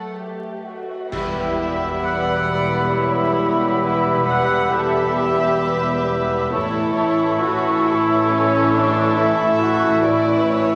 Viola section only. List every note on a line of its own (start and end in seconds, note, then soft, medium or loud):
0.00 0.88 A3 soft
1.12 2.00 E4 medium
2.03 2.94 F#5 medium
2.92 3.81 E4 medium
3.83 4.26 E4 medium
4.27 4.71 F#5 medium
4.70 6.52 G4 medium
6.52 6.96 E4 medium
6.97 7.41 E4 medium
7.42 7.86 F#4 medium
7.86 8.30 E4 medium
8.29 8.74 C#4 medium
8.73 9.17 D4 medium
9.17 9.60 E4 medium
9.61 10.04 F#4 medium
10.04 10.75 E4 medium